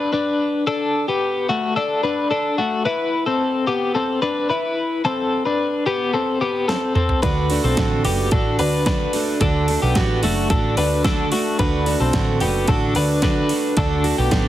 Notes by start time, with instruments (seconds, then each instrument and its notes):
Already playing: clean electric guitar D4 B4
0.13 clean electric guitar D4 B4
0.67 clean electric guitar D4 A4
1.08 clean electric guitar B3 G4
1.49 clean electric guitar A3 F#4
1.76 clean electric guitar D4 A4
2.04 clean electric guitar D4 B4
2.31 clean electric guitar D4 A4
2.58 clean electric guitar A3 F#4
2.85 clean electric guitar E4 B4
3.26 clean electric guitar C4 A4
3.67 clean electric guitar B3 G4
3.95 clean electric guitar C4 A4
4.22 clean electric guitar D4 B4
4.50 clean electric guitar E4 B4
5.05 clean electric guitar C4 A4
5.45 clean electric guitar D4 B4
5.86 clean electric guitar B3 G4
6.14 clean electric guitar C4 A4
6.41 clean electric guitar B3 G4
6.68 clean electric guitar C4 A4, snare
6.95 clean electric guitar C4 A4, mid tom
7.09 floor tom
7.22 picked electric bass D2, steel-string acoustic guitar D3 A3 D4 F#4, clean electric guitar D4 B4, kick, closed hi-hat
7.50 steel-string acoustic guitar A3 D4 F#4, open hi-hat
7.64 picked electric bass B1, clean electric guitar C4 A4
7.77 picked electric bass A1, steel-string acoustic guitar D3 A3 D4 F#4, kick, snare, closed hi-hat
8.04 picked electric bass F#1, steel-string acoustic guitar A3 D4 F#4, clean electric guitar B3 G4, open hi-hat
8.31 picked electric bass A1, steel-string acoustic guitar D3 A3 D4 F#4, clean electric guitar D4 A4, kick, closed hi-hat
8.59 picked electric bass D2, steel-string acoustic guitar A3 D4 F#4, clean electric guitar D4 B4, open hi-hat
8.86 steel-string acoustic guitar D3 A3 D4 F#4, clean electric guitar D4 B4, kick, snare, closed hi-hat
9.13 steel-string acoustic guitar A3 D4 F#4, open hi-hat
9.40 picked electric bass D2, steel-string acoustic guitar D3 A3 D4 F#4, clean electric guitar D4 A4, kick, closed hi-hat
9.68 steel-string acoustic guitar A3 D4 F#4, open hi-hat
9.82 picked electric bass B1, clean electric guitar B3 G4
9.95 picked electric bass A1, steel-string acoustic guitar D3 A3 D4 F#4, kick, snare, closed hi-hat
10.22 picked electric bass F#1, clean electric guitar A3 F#4, steel-string acoustic guitar A3 D4 F#4, open hi-hat
10.50 picked electric bass A1, steel-string acoustic guitar D3 A3 D4 F#4, clean electric guitar D4 A4, kick, closed hi-hat
10.77 picked electric bass D2, steel-string acoustic guitar A3 D4 F#4, clean electric guitar D4 B4, open hi-hat
11.04 steel-string acoustic guitar D3 A3 D4 F#4, clean electric guitar D4 A4, kick, snare, closed hi-hat
11.32 clean electric guitar A3 F#4, steel-string acoustic guitar A3 D4 F#4, open hi-hat
11.59 picked electric bass D2, steel-string acoustic guitar D3 A3 D4 F#4, clean electric guitar D4 B4, kick, closed hi-hat
11.86 steel-string acoustic guitar A3 D4 F#4, open hi-hat
12.00 picked electric bass B1, clean electric guitar C4 A4
12.13 picked electric bass A1, steel-string acoustic guitar D3 A3 D4 F#4, kick, snare, closed hi-hat
12.40 picked electric bass F#1, steel-string acoustic guitar A3 D4 F#4, clean electric guitar B3 G4, open hi-hat
12.67 picked electric bass A1, steel-string acoustic guitar D3 A3 D4 F#4, clean electric guitar D4 A4, kick, closed hi-hat
12.95 picked electric bass D2, steel-string acoustic guitar A3 D4 F#4, clean electric guitar D4 B4, open hi-hat
13.22 steel-string acoustic guitar D3 A3 D4 F#4, clean electric guitar D4 B4, kick, snare, closed hi-hat
13.49 steel-string acoustic guitar A3 D4 F#4, open hi-hat
13.77 picked electric bass D2, steel-string acoustic guitar D3 A3 D4 F#4, clean electric guitar D4 A4, kick, closed hi-hat
14.04 steel-string acoustic guitar A3 D4 F#4, open hi-hat
14.18 picked electric bass B1, clean electric guitar B3 G4
14.31 picked electric bass A1, steel-string acoustic guitar D3 A3 D4 F#4, kick, snare, closed hi-hat